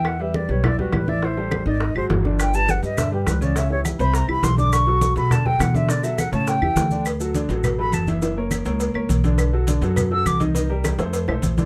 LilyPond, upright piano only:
\new Staff \with { instrumentName = "Upright piano" } { \time 4/4 \key b \minor \tempo 4 = 206 <e e' e''>8 <g g' b'>4 <g g' b'>8 <e e' e''>8 <g g' b'>4 <e e' e''>8 | <e e' e''>8 <g g' a'>4 <dis dis' dis''>4 <fis fis' gis'>4 <d d' d''>8~ | <d d' d''>8 <g g' b'>4 <g g' b'>8 <d d' d''>8 <g g' b'>4 <cis cis' cis''>8 | <cis cis' cis''>8 <e e' g'>4 <c c' c''>4 <e e' g'>4 <d d' d''>8~ |
<d d' d''>8 <fis fis' a'>4 <fis fis' a'>8 <d d' d''>8 <fis fis' a'>4 <d d' d''>8 | <d d' d''>8 <fis fis' a'>4 <cis cis' cis''>4 <e e' g'>4 <d d' d''>8 | \key fis \phrygian r8 <fis fis' a'>8 <d d' d''>8 <fis fis' a'>4 <fis fis' a'>4 <e e' e''>8 | <e e' e''>8 <ais ais' cis''>4 <ais ais' cis''>4 <ais ais' cis''>4 <d d' d''>8~ |
<d d' d''>8 <fis fis' a'>8 <d d' d''>8 <fis fis' a'>4 <fis fis' a'>4 <ees ees' ees''>8 | <ees ees' ees''>8 <g g' bes'>4 <a a' c''>4 <a a' c''>4 <d d' d''>8 | }